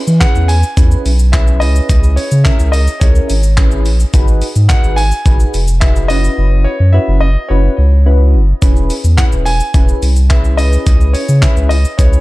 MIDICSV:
0, 0, Header, 1, 5, 480
1, 0, Start_track
1, 0, Tempo, 560748
1, 1621, Time_signature, 4, 2, 24, 8
1, 10449, End_track
2, 0, Start_track
2, 0, Title_t, "Grand piano"
2, 0, Program_c, 0, 0
2, 173, Note_on_c, 0, 78, 106
2, 400, Note_off_c, 0, 78, 0
2, 413, Note_on_c, 0, 80, 106
2, 1131, Note_on_c, 0, 76, 91
2, 1159, Note_off_c, 0, 80, 0
2, 1370, Note_on_c, 0, 75, 103
2, 1384, Note_off_c, 0, 76, 0
2, 1851, Note_on_c, 0, 73, 89
2, 1870, Note_off_c, 0, 75, 0
2, 2088, Note_on_c, 0, 76, 94
2, 2104, Note_off_c, 0, 73, 0
2, 2318, Note_off_c, 0, 76, 0
2, 2328, Note_on_c, 0, 75, 91
2, 2567, Note_on_c, 0, 73, 80
2, 2582, Note_off_c, 0, 75, 0
2, 3260, Note_off_c, 0, 73, 0
2, 4011, Note_on_c, 0, 78, 103
2, 4249, Note_on_c, 0, 80, 124
2, 4264, Note_off_c, 0, 78, 0
2, 4969, Note_on_c, 0, 76, 93
2, 4997, Note_off_c, 0, 80, 0
2, 5208, Note_on_c, 0, 75, 102
2, 5223, Note_off_c, 0, 76, 0
2, 5688, Note_on_c, 0, 73, 93
2, 5709, Note_off_c, 0, 75, 0
2, 5928, Note_on_c, 0, 76, 94
2, 5942, Note_off_c, 0, 73, 0
2, 6167, Note_on_c, 0, 75, 90
2, 6182, Note_off_c, 0, 76, 0
2, 6407, Note_on_c, 0, 73, 80
2, 6422, Note_off_c, 0, 75, 0
2, 7100, Note_off_c, 0, 73, 0
2, 7852, Note_on_c, 0, 78, 101
2, 7907, Note_off_c, 0, 78, 0
2, 8093, Note_on_c, 0, 80, 117
2, 8813, Note_on_c, 0, 76, 90
2, 8839, Note_off_c, 0, 80, 0
2, 9052, Note_on_c, 0, 75, 102
2, 9065, Note_off_c, 0, 76, 0
2, 9531, Note_on_c, 0, 73, 88
2, 9551, Note_off_c, 0, 75, 0
2, 9771, Note_on_c, 0, 76, 93
2, 9783, Note_off_c, 0, 73, 0
2, 10008, Note_on_c, 0, 75, 91
2, 10024, Note_off_c, 0, 76, 0
2, 10252, Note_on_c, 0, 73, 83
2, 10262, Note_off_c, 0, 75, 0
2, 10449, Note_off_c, 0, 73, 0
2, 10449, End_track
3, 0, Start_track
3, 0, Title_t, "Synth keys"
3, 0, Program_c, 1, 88
3, 177, Note_on_c, 1, 61, 85
3, 178, Note_on_c, 1, 64, 78
3, 180, Note_on_c, 1, 68, 78
3, 182, Note_on_c, 1, 71, 95
3, 455, Note_off_c, 1, 61, 0
3, 456, Note_off_c, 1, 64, 0
3, 457, Note_off_c, 1, 68, 0
3, 458, Note_off_c, 1, 71, 0
3, 659, Note_on_c, 1, 61, 79
3, 659, Note_on_c, 1, 64, 73
3, 660, Note_on_c, 1, 68, 69
3, 663, Note_on_c, 1, 71, 86
3, 936, Note_off_c, 1, 61, 0
3, 937, Note_off_c, 1, 64, 0
3, 937, Note_off_c, 1, 68, 0
3, 938, Note_off_c, 1, 71, 0
3, 1139, Note_on_c, 1, 61, 85
3, 1142, Note_on_c, 1, 64, 75
3, 1142, Note_on_c, 1, 68, 75
3, 1145, Note_on_c, 1, 71, 89
3, 1373, Note_off_c, 1, 61, 0
3, 1374, Note_off_c, 1, 64, 0
3, 1376, Note_off_c, 1, 68, 0
3, 1377, Note_off_c, 1, 71, 0
3, 1383, Note_on_c, 1, 61, 82
3, 1384, Note_on_c, 1, 64, 75
3, 1386, Note_on_c, 1, 68, 75
3, 1387, Note_on_c, 1, 71, 91
3, 1958, Note_off_c, 1, 61, 0
3, 1959, Note_off_c, 1, 64, 0
3, 1960, Note_off_c, 1, 68, 0
3, 1960, Note_off_c, 1, 71, 0
3, 2100, Note_on_c, 1, 61, 86
3, 2102, Note_on_c, 1, 64, 78
3, 2103, Note_on_c, 1, 68, 78
3, 2104, Note_on_c, 1, 70, 92
3, 2377, Note_off_c, 1, 61, 0
3, 2378, Note_off_c, 1, 64, 0
3, 2379, Note_off_c, 1, 68, 0
3, 2379, Note_off_c, 1, 70, 0
3, 2581, Note_on_c, 1, 61, 80
3, 2582, Note_on_c, 1, 64, 75
3, 2584, Note_on_c, 1, 68, 68
3, 2585, Note_on_c, 1, 70, 83
3, 2858, Note_off_c, 1, 61, 0
3, 2858, Note_off_c, 1, 64, 0
3, 2859, Note_off_c, 1, 68, 0
3, 2859, Note_off_c, 1, 70, 0
3, 3061, Note_on_c, 1, 61, 85
3, 3063, Note_on_c, 1, 64, 78
3, 3064, Note_on_c, 1, 68, 76
3, 3065, Note_on_c, 1, 71, 90
3, 3338, Note_off_c, 1, 61, 0
3, 3338, Note_off_c, 1, 64, 0
3, 3339, Note_off_c, 1, 68, 0
3, 3340, Note_off_c, 1, 71, 0
3, 3541, Note_on_c, 1, 63, 97
3, 3542, Note_on_c, 1, 66, 86
3, 3543, Note_on_c, 1, 68, 86
3, 3545, Note_on_c, 1, 71, 104
3, 3818, Note_off_c, 1, 63, 0
3, 3818, Note_off_c, 1, 66, 0
3, 3819, Note_off_c, 1, 68, 0
3, 3820, Note_off_c, 1, 71, 0
3, 4019, Note_on_c, 1, 63, 88
3, 4020, Note_on_c, 1, 66, 81
3, 4023, Note_on_c, 1, 68, 76
3, 4024, Note_on_c, 1, 71, 95
3, 4297, Note_off_c, 1, 63, 0
3, 4297, Note_off_c, 1, 66, 0
3, 4298, Note_off_c, 1, 68, 0
3, 4299, Note_off_c, 1, 71, 0
3, 4499, Note_on_c, 1, 63, 76
3, 4500, Note_on_c, 1, 66, 68
3, 4502, Note_on_c, 1, 68, 71
3, 4505, Note_on_c, 1, 71, 87
3, 4777, Note_off_c, 1, 63, 0
3, 4777, Note_off_c, 1, 66, 0
3, 4778, Note_off_c, 1, 68, 0
3, 4779, Note_off_c, 1, 71, 0
3, 4978, Note_on_c, 1, 63, 82
3, 4980, Note_on_c, 1, 66, 80
3, 4981, Note_on_c, 1, 68, 74
3, 4982, Note_on_c, 1, 71, 93
3, 5213, Note_off_c, 1, 66, 0
3, 5214, Note_off_c, 1, 71, 0
3, 5220, Note_off_c, 1, 63, 0
3, 5221, Note_off_c, 1, 68, 0
3, 5221, Note_on_c, 1, 61, 80
3, 5222, Note_on_c, 1, 64, 74
3, 5223, Note_on_c, 1, 66, 76
3, 5225, Note_on_c, 1, 71, 93
3, 5797, Note_off_c, 1, 61, 0
3, 5798, Note_off_c, 1, 64, 0
3, 5798, Note_off_c, 1, 66, 0
3, 5799, Note_off_c, 1, 71, 0
3, 5938, Note_on_c, 1, 61, 85
3, 5940, Note_on_c, 1, 64, 80
3, 5941, Note_on_c, 1, 66, 79
3, 5943, Note_on_c, 1, 71, 93
3, 6216, Note_off_c, 1, 61, 0
3, 6217, Note_off_c, 1, 64, 0
3, 6218, Note_off_c, 1, 66, 0
3, 6219, Note_off_c, 1, 71, 0
3, 6419, Note_on_c, 1, 61, 74
3, 6420, Note_on_c, 1, 64, 70
3, 6421, Note_on_c, 1, 66, 73
3, 6423, Note_on_c, 1, 71, 87
3, 6697, Note_off_c, 1, 61, 0
3, 6697, Note_off_c, 1, 64, 0
3, 6698, Note_off_c, 1, 66, 0
3, 6699, Note_off_c, 1, 71, 0
3, 6899, Note_on_c, 1, 61, 81
3, 6900, Note_on_c, 1, 64, 72
3, 6901, Note_on_c, 1, 66, 73
3, 6903, Note_on_c, 1, 71, 89
3, 7176, Note_off_c, 1, 61, 0
3, 7177, Note_off_c, 1, 64, 0
3, 7178, Note_off_c, 1, 66, 0
3, 7179, Note_off_c, 1, 71, 0
3, 7376, Note_on_c, 1, 61, 93
3, 7378, Note_on_c, 1, 64, 84
3, 7379, Note_on_c, 1, 68, 85
3, 7379, Note_on_c, 1, 71, 102
3, 7655, Note_off_c, 1, 61, 0
3, 7656, Note_off_c, 1, 64, 0
3, 7656, Note_off_c, 1, 68, 0
3, 7657, Note_off_c, 1, 71, 0
3, 7859, Note_on_c, 1, 61, 84
3, 7860, Note_on_c, 1, 64, 77
3, 7861, Note_on_c, 1, 68, 75
3, 7862, Note_on_c, 1, 71, 92
3, 8137, Note_off_c, 1, 61, 0
3, 8137, Note_off_c, 1, 64, 0
3, 8138, Note_off_c, 1, 68, 0
3, 8138, Note_off_c, 1, 71, 0
3, 8339, Note_on_c, 1, 61, 76
3, 8341, Note_on_c, 1, 64, 74
3, 8341, Note_on_c, 1, 68, 74
3, 8344, Note_on_c, 1, 71, 86
3, 8617, Note_off_c, 1, 61, 0
3, 8617, Note_off_c, 1, 64, 0
3, 8618, Note_off_c, 1, 68, 0
3, 8619, Note_off_c, 1, 71, 0
3, 8818, Note_on_c, 1, 61, 84
3, 8820, Note_on_c, 1, 64, 75
3, 8821, Note_on_c, 1, 68, 73
3, 8823, Note_on_c, 1, 71, 93
3, 9047, Note_off_c, 1, 61, 0
3, 9048, Note_off_c, 1, 64, 0
3, 9049, Note_off_c, 1, 68, 0
3, 9051, Note_off_c, 1, 71, 0
3, 9058, Note_on_c, 1, 61, 82
3, 9058, Note_on_c, 1, 64, 76
3, 9060, Note_on_c, 1, 68, 74
3, 9061, Note_on_c, 1, 71, 93
3, 9636, Note_off_c, 1, 61, 0
3, 9636, Note_off_c, 1, 64, 0
3, 9637, Note_off_c, 1, 68, 0
3, 9637, Note_off_c, 1, 71, 0
3, 9778, Note_on_c, 1, 61, 88
3, 9779, Note_on_c, 1, 64, 78
3, 9782, Note_on_c, 1, 68, 82
3, 9782, Note_on_c, 1, 71, 95
3, 10056, Note_off_c, 1, 61, 0
3, 10057, Note_off_c, 1, 64, 0
3, 10058, Note_off_c, 1, 68, 0
3, 10058, Note_off_c, 1, 71, 0
3, 10259, Note_on_c, 1, 61, 77
3, 10260, Note_on_c, 1, 64, 71
3, 10261, Note_on_c, 1, 68, 73
3, 10263, Note_on_c, 1, 71, 88
3, 10449, Note_off_c, 1, 61, 0
3, 10449, Note_off_c, 1, 64, 0
3, 10449, Note_off_c, 1, 68, 0
3, 10449, Note_off_c, 1, 71, 0
3, 10449, End_track
4, 0, Start_track
4, 0, Title_t, "Sub bass"
4, 0, Program_c, 2, 38
4, 63, Note_on_c, 2, 52, 96
4, 226, Note_off_c, 2, 52, 0
4, 301, Note_on_c, 2, 40, 103
4, 547, Note_off_c, 2, 40, 0
4, 661, Note_on_c, 2, 40, 102
4, 825, Note_off_c, 2, 40, 0
4, 902, Note_on_c, 2, 35, 95
4, 1383, Note_on_c, 2, 37, 94
4, 1396, Note_off_c, 2, 35, 0
4, 1546, Note_off_c, 2, 37, 0
4, 1622, Note_on_c, 2, 37, 112
4, 1867, Note_off_c, 2, 37, 0
4, 1983, Note_on_c, 2, 49, 96
4, 2146, Note_off_c, 2, 49, 0
4, 2223, Note_on_c, 2, 37, 102
4, 2468, Note_off_c, 2, 37, 0
4, 2580, Note_on_c, 2, 37, 103
4, 2745, Note_off_c, 2, 37, 0
4, 2823, Note_on_c, 2, 32, 96
4, 3303, Note_on_c, 2, 34, 94
4, 3316, Note_off_c, 2, 32, 0
4, 3466, Note_off_c, 2, 34, 0
4, 3542, Note_on_c, 2, 32, 106
4, 3787, Note_off_c, 2, 32, 0
4, 3901, Note_on_c, 2, 44, 103
4, 4065, Note_off_c, 2, 44, 0
4, 4141, Note_on_c, 2, 32, 99
4, 4387, Note_off_c, 2, 32, 0
4, 4500, Note_on_c, 2, 32, 102
4, 4664, Note_off_c, 2, 32, 0
4, 4742, Note_on_c, 2, 29, 98
4, 5222, Note_on_c, 2, 30, 94
4, 5235, Note_off_c, 2, 29, 0
4, 5386, Note_off_c, 2, 30, 0
4, 5461, Note_on_c, 2, 30, 107
4, 5707, Note_off_c, 2, 30, 0
4, 5820, Note_on_c, 2, 42, 98
4, 5984, Note_off_c, 2, 42, 0
4, 6061, Note_on_c, 2, 30, 102
4, 6306, Note_off_c, 2, 30, 0
4, 6421, Note_on_c, 2, 30, 105
4, 6585, Note_off_c, 2, 30, 0
4, 6661, Note_on_c, 2, 37, 93
4, 7141, Note_on_c, 2, 30, 94
4, 7154, Note_off_c, 2, 37, 0
4, 7305, Note_off_c, 2, 30, 0
4, 7380, Note_on_c, 2, 28, 104
4, 7626, Note_off_c, 2, 28, 0
4, 7739, Note_on_c, 2, 40, 100
4, 7904, Note_off_c, 2, 40, 0
4, 7981, Note_on_c, 2, 28, 100
4, 8226, Note_off_c, 2, 28, 0
4, 8339, Note_on_c, 2, 28, 96
4, 8504, Note_off_c, 2, 28, 0
4, 8580, Note_on_c, 2, 36, 96
4, 9060, Note_on_c, 2, 37, 93
4, 9072, Note_off_c, 2, 36, 0
4, 9224, Note_off_c, 2, 37, 0
4, 9301, Note_on_c, 2, 37, 108
4, 9547, Note_off_c, 2, 37, 0
4, 9662, Note_on_c, 2, 49, 98
4, 9825, Note_off_c, 2, 49, 0
4, 9901, Note_on_c, 2, 37, 98
4, 10147, Note_off_c, 2, 37, 0
4, 10261, Note_on_c, 2, 37, 99
4, 10425, Note_off_c, 2, 37, 0
4, 10449, End_track
5, 0, Start_track
5, 0, Title_t, "Drums"
5, 63, Note_on_c, 9, 82, 82
5, 149, Note_off_c, 9, 82, 0
5, 181, Note_on_c, 9, 36, 121
5, 181, Note_on_c, 9, 39, 109
5, 183, Note_on_c, 9, 42, 81
5, 183, Note_on_c, 9, 82, 81
5, 267, Note_off_c, 9, 36, 0
5, 267, Note_off_c, 9, 39, 0
5, 269, Note_off_c, 9, 42, 0
5, 269, Note_off_c, 9, 82, 0
5, 302, Note_on_c, 9, 82, 62
5, 388, Note_off_c, 9, 82, 0
5, 420, Note_on_c, 9, 46, 83
5, 420, Note_on_c, 9, 82, 58
5, 506, Note_off_c, 9, 46, 0
5, 506, Note_off_c, 9, 82, 0
5, 540, Note_on_c, 9, 82, 67
5, 626, Note_off_c, 9, 82, 0
5, 661, Note_on_c, 9, 36, 117
5, 662, Note_on_c, 9, 42, 81
5, 662, Note_on_c, 9, 82, 81
5, 747, Note_off_c, 9, 36, 0
5, 747, Note_off_c, 9, 42, 0
5, 747, Note_off_c, 9, 82, 0
5, 783, Note_on_c, 9, 82, 56
5, 868, Note_off_c, 9, 82, 0
5, 904, Note_on_c, 9, 46, 83
5, 904, Note_on_c, 9, 82, 57
5, 990, Note_off_c, 9, 46, 0
5, 990, Note_off_c, 9, 82, 0
5, 1021, Note_on_c, 9, 82, 81
5, 1106, Note_off_c, 9, 82, 0
5, 1142, Note_on_c, 9, 42, 62
5, 1142, Note_on_c, 9, 82, 62
5, 1143, Note_on_c, 9, 36, 123
5, 1143, Note_on_c, 9, 39, 111
5, 1227, Note_off_c, 9, 42, 0
5, 1227, Note_off_c, 9, 82, 0
5, 1228, Note_off_c, 9, 36, 0
5, 1229, Note_off_c, 9, 39, 0
5, 1263, Note_on_c, 9, 82, 52
5, 1348, Note_off_c, 9, 82, 0
5, 1383, Note_on_c, 9, 46, 71
5, 1383, Note_on_c, 9, 82, 52
5, 1468, Note_off_c, 9, 46, 0
5, 1468, Note_off_c, 9, 82, 0
5, 1505, Note_on_c, 9, 82, 75
5, 1590, Note_off_c, 9, 82, 0
5, 1622, Note_on_c, 9, 36, 110
5, 1622, Note_on_c, 9, 42, 88
5, 1622, Note_on_c, 9, 82, 90
5, 1707, Note_off_c, 9, 36, 0
5, 1708, Note_off_c, 9, 42, 0
5, 1708, Note_off_c, 9, 82, 0
5, 1742, Note_on_c, 9, 82, 48
5, 1828, Note_off_c, 9, 82, 0
5, 1860, Note_on_c, 9, 46, 72
5, 1860, Note_on_c, 9, 82, 56
5, 1946, Note_off_c, 9, 46, 0
5, 1946, Note_off_c, 9, 82, 0
5, 1982, Note_on_c, 9, 82, 83
5, 2067, Note_off_c, 9, 82, 0
5, 2099, Note_on_c, 9, 39, 113
5, 2101, Note_on_c, 9, 36, 116
5, 2101, Note_on_c, 9, 42, 85
5, 2101, Note_on_c, 9, 82, 81
5, 2185, Note_off_c, 9, 39, 0
5, 2187, Note_off_c, 9, 36, 0
5, 2187, Note_off_c, 9, 42, 0
5, 2187, Note_off_c, 9, 82, 0
5, 2221, Note_on_c, 9, 82, 64
5, 2307, Note_off_c, 9, 82, 0
5, 2340, Note_on_c, 9, 46, 81
5, 2340, Note_on_c, 9, 82, 58
5, 2426, Note_off_c, 9, 46, 0
5, 2426, Note_off_c, 9, 82, 0
5, 2461, Note_on_c, 9, 82, 72
5, 2546, Note_off_c, 9, 82, 0
5, 2580, Note_on_c, 9, 36, 114
5, 2580, Note_on_c, 9, 42, 82
5, 2580, Note_on_c, 9, 82, 86
5, 2665, Note_off_c, 9, 42, 0
5, 2665, Note_off_c, 9, 82, 0
5, 2666, Note_off_c, 9, 36, 0
5, 2701, Note_on_c, 9, 82, 57
5, 2786, Note_off_c, 9, 82, 0
5, 2821, Note_on_c, 9, 46, 86
5, 2821, Note_on_c, 9, 82, 60
5, 2907, Note_off_c, 9, 46, 0
5, 2907, Note_off_c, 9, 82, 0
5, 2939, Note_on_c, 9, 82, 83
5, 3024, Note_off_c, 9, 82, 0
5, 3059, Note_on_c, 9, 42, 63
5, 3059, Note_on_c, 9, 82, 61
5, 3060, Note_on_c, 9, 39, 114
5, 3061, Note_on_c, 9, 36, 123
5, 3144, Note_off_c, 9, 42, 0
5, 3144, Note_off_c, 9, 82, 0
5, 3146, Note_off_c, 9, 39, 0
5, 3147, Note_off_c, 9, 36, 0
5, 3179, Note_on_c, 9, 82, 53
5, 3265, Note_off_c, 9, 82, 0
5, 3300, Note_on_c, 9, 46, 72
5, 3300, Note_on_c, 9, 82, 52
5, 3386, Note_off_c, 9, 46, 0
5, 3386, Note_off_c, 9, 82, 0
5, 3423, Note_on_c, 9, 82, 73
5, 3509, Note_off_c, 9, 82, 0
5, 3541, Note_on_c, 9, 36, 111
5, 3541, Note_on_c, 9, 42, 92
5, 3541, Note_on_c, 9, 82, 89
5, 3626, Note_off_c, 9, 42, 0
5, 3626, Note_off_c, 9, 82, 0
5, 3627, Note_off_c, 9, 36, 0
5, 3662, Note_on_c, 9, 82, 49
5, 3748, Note_off_c, 9, 82, 0
5, 3780, Note_on_c, 9, 46, 79
5, 3780, Note_on_c, 9, 82, 53
5, 3865, Note_off_c, 9, 46, 0
5, 3865, Note_off_c, 9, 82, 0
5, 3900, Note_on_c, 9, 82, 82
5, 3986, Note_off_c, 9, 82, 0
5, 4019, Note_on_c, 9, 39, 112
5, 4020, Note_on_c, 9, 36, 122
5, 4021, Note_on_c, 9, 42, 81
5, 4021, Note_on_c, 9, 82, 85
5, 4105, Note_off_c, 9, 39, 0
5, 4106, Note_off_c, 9, 36, 0
5, 4107, Note_off_c, 9, 42, 0
5, 4107, Note_off_c, 9, 82, 0
5, 4142, Note_on_c, 9, 82, 63
5, 4227, Note_off_c, 9, 82, 0
5, 4260, Note_on_c, 9, 46, 83
5, 4260, Note_on_c, 9, 82, 58
5, 4345, Note_off_c, 9, 46, 0
5, 4345, Note_off_c, 9, 82, 0
5, 4379, Note_on_c, 9, 82, 67
5, 4465, Note_off_c, 9, 82, 0
5, 4500, Note_on_c, 9, 36, 114
5, 4500, Note_on_c, 9, 42, 82
5, 4500, Note_on_c, 9, 82, 84
5, 4586, Note_off_c, 9, 36, 0
5, 4586, Note_off_c, 9, 42, 0
5, 4586, Note_off_c, 9, 82, 0
5, 4622, Note_on_c, 9, 82, 54
5, 4708, Note_off_c, 9, 82, 0
5, 4742, Note_on_c, 9, 46, 82
5, 4742, Note_on_c, 9, 82, 61
5, 4828, Note_off_c, 9, 46, 0
5, 4828, Note_off_c, 9, 82, 0
5, 4860, Note_on_c, 9, 82, 82
5, 4945, Note_off_c, 9, 82, 0
5, 4979, Note_on_c, 9, 42, 64
5, 4979, Note_on_c, 9, 82, 60
5, 4981, Note_on_c, 9, 39, 114
5, 4982, Note_on_c, 9, 36, 119
5, 5065, Note_off_c, 9, 42, 0
5, 5065, Note_off_c, 9, 82, 0
5, 5066, Note_off_c, 9, 39, 0
5, 5067, Note_off_c, 9, 36, 0
5, 5102, Note_on_c, 9, 82, 51
5, 5188, Note_off_c, 9, 82, 0
5, 5221, Note_on_c, 9, 46, 72
5, 5221, Note_on_c, 9, 82, 53
5, 5306, Note_off_c, 9, 46, 0
5, 5306, Note_off_c, 9, 82, 0
5, 5344, Note_on_c, 9, 82, 74
5, 5430, Note_off_c, 9, 82, 0
5, 7380, Note_on_c, 9, 42, 91
5, 7380, Note_on_c, 9, 82, 88
5, 7381, Note_on_c, 9, 36, 114
5, 7466, Note_off_c, 9, 36, 0
5, 7466, Note_off_c, 9, 42, 0
5, 7466, Note_off_c, 9, 82, 0
5, 7501, Note_on_c, 9, 82, 46
5, 7587, Note_off_c, 9, 82, 0
5, 7618, Note_on_c, 9, 46, 77
5, 7618, Note_on_c, 9, 82, 56
5, 7704, Note_off_c, 9, 46, 0
5, 7704, Note_off_c, 9, 82, 0
5, 7741, Note_on_c, 9, 82, 85
5, 7827, Note_off_c, 9, 82, 0
5, 7859, Note_on_c, 9, 39, 112
5, 7860, Note_on_c, 9, 36, 116
5, 7861, Note_on_c, 9, 42, 78
5, 7861, Note_on_c, 9, 82, 83
5, 7944, Note_off_c, 9, 39, 0
5, 7946, Note_off_c, 9, 36, 0
5, 7946, Note_off_c, 9, 42, 0
5, 7946, Note_off_c, 9, 82, 0
5, 7980, Note_on_c, 9, 82, 64
5, 8066, Note_off_c, 9, 82, 0
5, 8099, Note_on_c, 9, 46, 83
5, 8099, Note_on_c, 9, 82, 58
5, 8185, Note_off_c, 9, 46, 0
5, 8185, Note_off_c, 9, 82, 0
5, 8219, Note_on_c, 9, 82, 70
5, 8305, Note_off_c, 9, 82, 0
5, 8339, Note_on_c, 9, 42, 86
5, 8339, Note_on_c, 9, 82, 81
5, 8340, Note_on_c, 9, 36, 110
5, 8425, Note_off_c, 9, 42, 0
5, 8425, Note_off_c, 9, 82, 0
5, 8426, Note_off_c, 9, 36, 0
5, 8462, Note_on_c, 9, 82, 55
5, 8547, Note_off_c, 9, 82, 0
5, 8581, Note_on_c, 9, 46, 82
5, 8581, Note_on_c, 9, 82, 56
5, 8667, Note_off_c, 9, 46, 0
5, 8667, Note_off_c, 9, 82, 0
5, 8699, Note_on_c, 9, 82, 84
5, 8784, Note_off_c, 9, 82, 0
5, 8819, Note_on_c, 9, 42, 64
5, 8819, Note_on_c, 9, 82, 60
5, 8820, Note_on_c, 9, 39, 107
5, 8822, Note_on_c, 9, 36, 124
5, 8904, Note_off_c, 9, 42, 0
5, 8904, Note_off_c, 9, 82, 0
5, 8906, Note_off_c, 9, 39, 0
5, 8907, Note_off_c, 9, 36, 0
5, 8941, Note_on_c, 9, 82, 53
5, 9027, Note_off_c, 9, 82, 0
5, 9061, Note_on_c, 9, 46, 73
5, 9061, Note_on_c, 9, 82, 51
5, 9146, Note_off_c, 9, 46, 0
5, 9146, Note_off_c, 9, 82, 0
5, 9183, Note_on_c, 9, 82, 74
5, 9268, Note_off_c, 9, 82, 0
5, 9301, Note_on_c, 9, 36, 113
5, 9301, Note_on_c, 9, 42, 90
5, 9301, Note_on_c, 9, 82, 90
5, 9386, Note_off_c, 9, 42, 0
5, 9386, Note_off_c, 9, 82, 0
5, 9387, Note_off_c, 9, 36, 0
5, 9422, Note_on_c, 9, 82, 48
5, 9508, Note_off_c, 9, 82, 0
5, 9540, Note_on_c, 9, 46, 74
5, 9540, Note_on_c, 9, 82, 54
5, 9626, Note_off_c, 9, 46, 0
5, 9626, Note_off_c, 9, 82, 0
5, 9662, Note_on_c, 9, 82, 82
5, 9747, Note_off_c, 9, 82, 0
5, 9779, Note_on_c, 9, 39, 114
5, 9781, Note_on_c, 9, 36, 114
5, 9781, Note_on_c, 9, 42, 82
5, 9781, Note_on_c, 9, 82, 82
5, 9865, Note_off_c, 9, 39, 0
5, 9867, Note_off_c, 9, 36, 0
5, 9867, Note_off_c, 9, 42, 0
5, 9867, Note_off_c, 9, 82, 0
5, 9901, Note_on_c, 9, 82, 67
5, 9987, Note_off_c, 9, 82, 0
5, 10021, Note_on_c, 9, 46, 79
5, 10021, Note_on_c, 9, 82, 58
5, 10107, Note_off_c, 9, 46, 0
5, 10107, Note_off_c, 9, 82, 0
5, 10142, Note_on_c, 9, 82, 67
5, 10228, Note_off_c, 9, 82, 0
5, 10262, Note_on_c, 9, 36, 110
5, 10263, Note_on_c, 9, 42, 83
5, 10263, Note_on_c, 9, 82, 85
5, 10347, Note_off_c, 9, 36, 0
5, 10348, Note_off_c, 9, 42, 0
5, 10348, Note_off_c, 9, 82, 0
5, 10384, Note_on_c, 9, 82, 54
5, 10449, Note_off_c, 9, 82, 0
5, 10449, End_track
0, 0, End_of_file